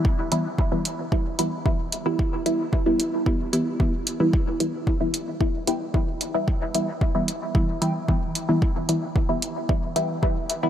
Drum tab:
HH |-x-x-x-x|-x-x-x-x|-x-x-x-x|-x-x-x-x|
BD |o-o-o-o-|o-o-o-o-|o-o-o-o-|o-o-o-o-|

HH |-x-x-x-x|
BD |o-o-o-o-|